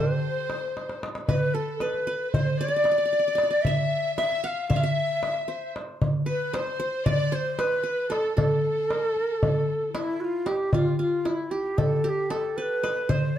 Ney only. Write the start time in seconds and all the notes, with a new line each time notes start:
Already playing: C5
1.29 B4
1.54 A4
1.79 B4
2.31 C5
2.58 D5
3.62 E5
4.16 E5
4.44 F5 F#5
4.68 E5
6.28 B4
6.54 C5
7.08 D5
7.34 C5
7.59 B4
8.12 A4
8.37 A4
8.91 A#4
9.06 A4
9.22 A#4
9.37 A4
9.93 E4
10.20 F4 F#4
10.48 G4
10.73 F4
11.01 F4
11.25 E4
11.51 G4
11.78 A4
12.04 A4
12.09 G4
12.31 A4
12.57 C5
12.62 B4
13.10 C5